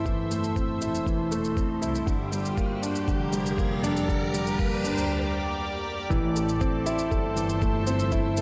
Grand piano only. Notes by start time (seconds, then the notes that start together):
Already playing: E3 A3 C4 E4
0.06 E3
0.30 A3
0.56 C4
0.82 E4
1.06 E3
1.32 A3
1.57 C4
1.82 E4
2.07 D3
2.32 G3
2.57 A#3
2.82 D4
3.08 D3
3.33 G3
3.58 A#3
3.83 D4
4.08 D3
4.34 G3
4.59 A#3
4.84 D4
6.10 E3
6.36 A3
6.61 C4
6.86 E4
7.11 A4
7.36 E3
7.62 A3
7.87 C4
8.12 E4
8.37 A4